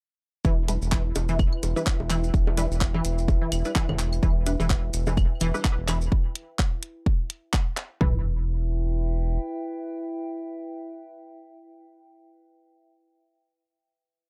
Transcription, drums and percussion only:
0.45 kick, maracas
0.68 closed hi-hat, high bongo, maracas
0.82 maracas
0.92 kick, clap, maracas
1.15 closed hi-hat, high bongo, maracas
1.29 maracas
1.39 kick, claves, maracas
1.53 claves
1.63 closed hi-hat, high bongo, maracas
1.76 maracas
1.87 kick, clap, maracas
2.00 high bongo
2.10 clap, closed hi-hat, claves, maracas
2.24 maracas
2.34 kick, maracas
2.47 high bongo
2.57 closed hi-hat, maracas
2.72 maracas
2.80 kick, clap, claves, maracas
2.95 high bongo
3.05 closed hi-hat, maracas
3.18 maracas
3.28 kick, high bongo, maracas
3.52 closed hi-hat, claves, maracas
3.65 maracas
3.76 kick, clap, high bongo, maracas
3.89 low conga, claves
3.99 clap, closed hi-hat, maracas
4.13 claves, maracas
4.23 kick, high bongo, maracas
4.46 closed hi-hat, maracas
4.60 high bongo, maracas
4.70 kick, clap, maracas
4.94 closed hi-hat, maracas
5.07 high bongo, maracas
5.17 kick, claves, maracas
5.41 closed hi-hat, claves, maracas
5.54 high bongo, maracas
5.65 kick, clap, maracas
5.88 clap, closed hi-hat, high bongo, claves, maracas
6.01 maracas
6.12 kick
6.35 closed hi-hat
6.59 kick, clap
6.83 closed hi-hat
7.06 kick
7.30 closed hi-hat
7.53 kick, clap
7.77 clap, closed hi-hat
8.01 kick, floor tom

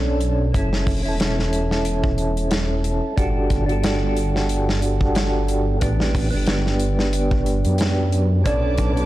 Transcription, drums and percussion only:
0.21 closed hi-hat
0.54 kick, closed hi-hat
0.73 snare
0.87 kick, open hi-hat
1.20 snare, closed hi-hat
1.39 snare
1.53 closed hi-hat
1.71 snare
1.85 closed hi-hat
2.04 kick
2.18 closed hi-hat
2.37 closed hi-hat
2.51 snare, closed hi-hat
2.84 closed hi-hat
3.17 kick, closed hi-hat
3.50 kick, closed hi-hat
3.69 closed hi-hat
3.84 snare, closed hi-hat
4.17 closed hi-hat
4.36 snare
4.49 closed hi-hat
4.69 snare
4.82 closed hi-hat
5.01 kick
5.15 snare, closed hi-hat
5.48 closed hi-hat
5.81 kick, closed hi-hat
6.00 snare
6.15 kick, open hi-hat
6.47 snare, closed hi-hat
6.66 snare
6.79 closed hi-hat
6.99 snare
7.13 closed hi-hat
7.31 kick
7.46 closed hi-hat
7.65 closed hi-hat
7.78 snare, closed hi-hat
8.12 closed hi-hat
8.46 kick, closed hi-hat
8.78 kick, closed hi-hat
8.97 closed hi-hat

